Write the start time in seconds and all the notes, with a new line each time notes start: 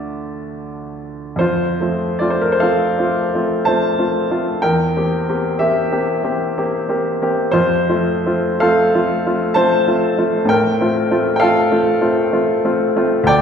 Already playing: D2 F3 D4 A4 D5
1.36 F2 C5
1.40 F4
1.80 A3 C4 F4
2.19 A3 C4 F4 D5
2.30 C5
2.41 A#4
2.52 C5
2.60 A3 C4 F4 A4 F5
2.99 A3 C4 F4
3.34 A3 C4 F4
3.65 A3 C4 F4 C5 A5
3.98 A3 C4 F4
4.31 A3 C4 F4
4.62 E2 A#4 G5
4.96 A#3 C4 G4
5.29 A#3 C4 G4
5.59 A#3 C4 G4 E5
5.92 A#3 C4 G4
6.23 A#3 C4 G4
6.58 A#3 C4 G4
6.89 A#3 C4 G4
7.22 A#3 C4 G4
7.51 F2 F4 C5
7.90 A3 C4 F4
8.26 A3 C4 F4
8.60 A3 C4 F4 A4 F5
8.94 A3 C4 F4
9.26 A3 C4 F4
9.54 A3 C4 F4 C5 A5
9.88 A3 C4 F4
10.18 A3 C4 F4
10.45 A2 G5
10.50 A#4
10.81 A3 C4 F4
11.11 A3 C4 F4
11.36 F5 G5
11.41 A3 C4 F4 A4
11.72 A3 C4 F4
12.01 A3 C4 F4
12.33 A3 C4 F4
12.65 A3 C4 F4
12.96 A3 C4 F4
13.23 D2 G5
13.28 D5